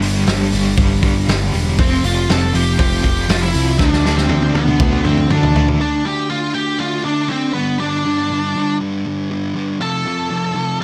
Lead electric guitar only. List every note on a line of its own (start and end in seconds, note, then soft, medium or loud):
1.80 2.03 C4 medium
1.80 2.05 C5 medium
2.05 2.28 F4 medium
2.05 2.30 F5 loud
2.31 2.53 A4 medium
2.31 2.55 A5 loud
2.55 2.78 G4 medium
2.55 2.78 G5 medium
2.80 3.26 G4 medium
2.80 3.31 G5 loud
3.30 3.42 F4 medium
3.30 3.41 F5 loud
3.42 3.77 E4 medium
3.42 3.77 E5 loud
3.78 4.14 D4 medium
3.78 4.18 D5 loud
4.16 4.52 C4 medium
4.16 4.54 C5 medium
4.55 5.02 B3 medium
4.55 5.05 B4 medium
5.05 5.29 C4 medium
5.05 5.31 C5 medium
5.32 5.66 D4 medium
5.32 5.66 D5 medium
5.81 6.04 D4 medium
5.81 6.06 D5 loud
6.05 6.29 G4 medium
6.05 6.28 G5 medium
6.30 6.54 F4 medium
6.30 6.56 F5 loud
6.54 6.78 G4 medium
6.54 6.81 G5 medium
6.79 7.03 F4 medium
6.79 7.05 F5 loud
7.05 7.28 D4 medium
7.05 7.31 D5 medium
7.28 7.53 C4 medium
7.28 7.53 C5 medium
7.53 7.78 B3 medium
7.53 7.80 B4 medium
7.79 8.76 D4 medium
7.79 8.76 D5 loud
9.82 10.78 A4 medium
9.82 10.84 A5 loud